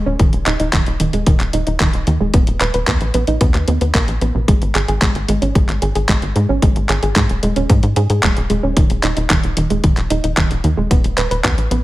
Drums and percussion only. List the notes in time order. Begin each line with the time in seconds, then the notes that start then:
0.19 kick, closed hi-hat
0.33 closed hi-hat
0.46 clap, closed hi-hat
0.60 closed hi-hat
0.73 kick, clap, closed hi-hat
0.86 closed hi-hat
1.00 closed hi-hat
1.13 closed hi-hat
1.27 kick, closed hi-hat
1.40 clap, closed hi-hat
1.53 closed hi-hat
1.67 closed hi-hat
1.80 kick, clap, closed hi-hat
1.93 closed hi-hat
2.07 closed hi-hat
2.34 kick, closed hi-hat
2.47 closed hi-hat
2.61 clap, closed hi-hat
2.74 closed hi-hat
2.87 kick, clap, closed hi-hat
3.01 closed hi-hat
3.14 closed hi-hat
3.27 closed hi-hat
3.41 kick, closed hi-hat
3.54 clap, closed hi-hat
3.68 closed hi-hat
3.81 closed hi-hat
3.95 kick, clap, closed hi-hat
4.08 closed hi-hat
4.21 closed hi-hat
4.48 kick, closed hi-hat
4.62 closed hi-hat
4.75 clap, closed hi-hat
4.88 closed hi-hat
5.02 kick, clap, closed hi-hat
5.15 closed hi-hat
5.29 closed hi-hat
5.42 closed hi-hat
5.55 kick, closed hi-hat
5.69 clap, closed hi-hat
5.82 closed hi-hat
5.95 closed hi-hat
6.09 kick, clap, closed hi-hat
6.22 closed hi-hat
6.36 closed hi-hat
6.62 kick, closed hi-hat
6.76 closed hi-hat
6.89 clap, closed hi-hat
7.03 closed hi-hat
7.16 kick, clap, closed hi-hat
7.29 closed hi-hat
7.43 closed hi-hat
7.56 closed hi-hat
7.70 kick, closed hi-hat
7.83 closed hi-hat
7.96 closed hi-hat
8.10 closed hi-hat
8.23 kick, clap, closed hi-hat
8.37 closed hi-hat
8.50 closed hi-hat
8.77 kick, closed hi-hat
8.90 closed hi-hat
9.03 clap, closed hi-hat
9.17 closed hi-hat
9.30 kick, clap, closed hi-hat
9.43 closed hi-hat
9.57 closed hi-hat
9.70 closed hi-hat
9.84 kick, closed hi-hat
9.97 clap, closed hi-hat
10.10 closed hi-hat
10.24 closed hi-hat
10.37 kick, clap, closed hi-hat
10.51 closed hi-hat
10.64 closed hi-hat
10.91 kick, closed hi-hat
11.04 closed hi-hat
11.18 clap, closed hi-hat
11.31 closed hi-hat
11.44 kick, clap, closed hi-hat
11.58 closed hi-hat
11.71 closed hi-hat